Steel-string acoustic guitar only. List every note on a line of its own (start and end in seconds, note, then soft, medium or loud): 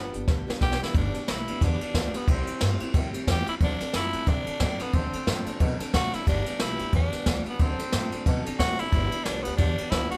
0.00 0.14 G3 medium
0.00 0.14 B3 medium
0.00 0.14 D4 medium
0.00 0.12 G4 medium
0.13 0.27 G3 medium
0.13 0.28 B3 medium
0.13 0.28 D4 medium
0.13 0.27 G4 medium
0.28 0.48 G2 medium
0.28 0.48 D3 medium
0.28 0.48 G3 medium
0.28 0.48 B3 medium
0.28 0.47 D4 medium
0.28 0.46 G4 medium
0.47 0.59 G3 medium
0.47 0.60 B3 medium
0.47 0.61 D4 medium
0.47 0.61 G4 medium
0.60 0.81 G3 medium
0.60 0.81 B3 medium
0.60 0.80 D4 medium
0.60 0.79 G4 medium
0.81 0.94 G3 medium
0.81 0.95 B3 soft
0.81 0.95 D4 medium
0.81 0.94 G4 medium
0.95 1.14 G2 medium
0.95 1.14 D3 medium
0.95 1.15 G3 medium
0.95 1.15 B3 medium
0.95 1.14 D4 medium
0.95 1.13 G4 medium
1.14 1.27 G3 soft
1.14 1.28 B3 soft
1.14 1.29 D4 medium
1.14 1.28 G4 medium
1.28 1.47 G3 medium
1.28 1.48 B3 medium
1.28 1.48 D4 medium
1.28 1.46 G4 medium
1.48 1.61 G3 soft
1.48 1.61 B3 medium
1.48 1.61 D4 medium
1.48 1.61 G4 medium
1.60 1.80 G2 medium
1.60 1.81 D3 medium
1.60 1.81 G3 medium
1.60 1.81 B3 medium
1.60 1.80 D4 medium
1.60 1.79 G4 medium
1.80 1.93 G3 medium
1.80 1.94 B3 soft
1.80 1.95 D4 soft
1.80 1.94 G4 medium
1.94 2.14 G3 medium
1.94 2.14 B3 medium
1.94 2.13 D4 medium
1.94 2.12 G4 medium
2.13 2.27 G3 soft
2.13 2.28 B3 soft
2.13 2.28 D4 soft
2.13 2.27 G4 medium
2.27 2.47 C3 medium
2.27 2.48 G3 medium
2.27 2.48 C4 medium
2.27 2.46 E4 medium
2.27 2.45 G4 medium
2.46 2.60 C4 soft
2.46 2.61 E4 soft
2.46 2.61 G4 medium
2.60 2.80 G3 medium
2.60 2.81 C4 medium
2.60 2.80 E4 medium
2.60 2.79 G4 medium
2.80 2.94 C4 medium
2.80 2.94 E4 medium
2.80 2.94 G4 medium
2.94 3.14 C3 medium
2.94 3.14 G3 medium
2.94 3.14 C4 medium
2.94 3.13 E4 medium
2.94 3.12 G4 loud
3.13 3.27 C4 medium
3.13 3.28 E4 medium
3.13 3.27 G4 medium
3.27 3.47 G3 medium
3.27 3.48 C4 medium
3.27 3.47 E4 medium
3.27 3.46 G4 medium
3.47 3.61 C4 soft
3.47 3.62 E4 medium
3.47 3.61 G4 medium
3.60 3.80 D3 medium
3.60 3.81 F#3 medium
3.60 3.81 C4 medium
3.60 3.79 D4 medium
3.60 3.78 A4 medium
3.79 3.93 C4 soft
3.79 3.94 D4 medium
3.79 3.94 A4 medium
3.93 4.13 F#3 medium
3.93 4.14 C4 medium
3.93 4.13 D4 medium
3.93 4.12 A4 medium
4.13 4.26 C4 soft
4.13 4.26 D4 soft
4.13 4.26 A4 medium
4.26 4.46 D3 medium
4.26 4.46 F#3 medium
4.26 4.47 C4 medium
4.26 4.47 D4 medium
4.26 4.45 A4 medium
4.46 4.60 C4 soft
4.46 4.60 D4 medium
4.46 4.60 A4 medium
4.60 4.80 F#3 medium
4.60 4.81 C4 medium
4.60 4.80 D4 medium
4.60 4.79 A4 medium
4.80 4.93 C4 soft
4.80 4.94 D4 medium
4.80 4.94 A4 medium
4.93 5.13 D3 medium
4.93 5.14 F#3 medium
4.93 5.14 C4 medium
4.93 5.14 D4 medium
4.93 5.12 A4 medium
5.13 5.27 C4 soft
5.13 5.27 D4 medium
5.13 5.27 A4 medium
5.27 5.47 F#3 medium
5.27 5.47 C4 medium
5.27 5.46 D4 medium
5.27 5.44 A4 medium
5.45 5.59 C4 medium
5.45 5.60 D4 medium
5.45 5.60 A4 medium
5.60 5.80 D3 medium
5.60 5.80 F#3 medium
5.60 5.80 C4 medium
5.60 5.79 D4 medium
5.60 5.77 A4 loud
5.78 5.92 C4 medium
5.78 5.93 D4 medium
5.78 5.93 A4 medium
5.92 6.13 F#3 medium
5.92 6.13 C4 medium
5.92 6.12 D4 medium
5.92 6.10 A4 medium
6.12 6.26 C4 soft
6.12 6.26 D4 medium
6.12 6.26 A4 medium
6.25 6.46 G2 medium
6.25 6.46 D3 medium
6.25 6.46 G3 medium
6.25 6.46 B3 medium
6.25 6.46 D4 medium
6.25 6.44 G4 medium
6.46 6.58 G3 soft
6.46 6.59 B3 soft
6.46 6.60 D4 soft
6.46 6.60 G4 medium
6.59 6.79 G3 medium
6.59 6.80 B3 medium
6.59 6.79 D4 medium
6.59 6.78 G4 medium
6.79 6.93 G3 soft
6.79 6.94 B3 soft
6.79 6.94 D4 medium
6.79 6.93 G4 medium
6.93 7.13 G2 medium
6.93 7.13 D3 medium
6.93 7.13 G3 medium
6.93 7.13 B3 medium
6.93 7.12 D4 medium
6.93 7.11 G4 medium
7.13 7.25 G3 medium
7.13 7.26 B3 medium
7.13 7.27 D4 medium
7.13 7.27 G4 medium
7.26 7.46 G3 medium
7.26 7.47 B3 medium
7.26 7.46 D4 medium
7.26 7.45 G4 medium
7.46 7.60 G3 medium
7.46 7.60 B3 soft
7.46 7.60 D4 medium
7.46 7.60 G4 medium
7.60 7.79 D3 medium
7.60 7.80 F#3 medium
7.60 7.80 C4 medium
7.60 7.79 D4 medium
7.60 7.78 A4 loud
7.79 7.93 C4 soft
7.79 7.94 D4 medium
7.79 7.93 A4 medium
7.92 8.12 F#3 medium
7.92 8.12 D4 medium
7.92 8.11 A4 medium
8.12 8.25 C4 soft
8.12 8.26 D4 medium
8.12 8.26 A4 medium
8.26 8.46 D3 medium
8.26 8.46 F#3 medium
8.26 8.46 C4 medium
8.26 8.45 D4 medium
8.26 8.44 A4 medium
8.45 8.59 C4 medium
8.45 8.60 D4 medium
8.45 8.59 A4 medium
8.59 8.79 F#3 medium
8.59 8.79 C4 medium
8.59 8.77 A4 medium
8.78 8.94 C4 soft
8.78 8.93 D4 medium
8.78 8.93 A4 medium
8.92 9.12 G2 medium
8.92 9.13 D3 medium
8.92 9.13 G3 medium
8.92 9.13 B3 medium
8.92 9.13 D4 medium
8.92 9.11 G4 medium
9.12 9.24 G3 soft
9.12 9.25 B3 soft
9.12 9.26 D4 medium
9.12 9.26 G4 medium
9.25 9.45 G3 medium
9.25 9.46 B3 medium
9.25 9.46 D4 medium
9.25 9.44 G4 medium
9.46 9.59 G3 medium
9.46 9.59 B3 medium
9.46 9.60 D4 medium
9.46 9.59 G4 medium
9.59 9.79 G2 medium
9.59 9.79 D3 medium
9.59 9.79 G3 medium
9.59 9.79 B3 medium
9.59 9.78 D4 medium
9.59 9.77 G4 medium
9.78 9.91 G3 medium
9.78 9.92 B3 soft
9.78 9.93 D4 medium
9.78 9.92 G4 medium
9.92 10.12 G3 medium
9.92 10.12 B3 medium
9.92 10.11 D4 medium
9.92 10.10 G4 medium
10.12 10.17 B3 soft
10.12 10.17 D4 medium
10.12 10.17 G4 medium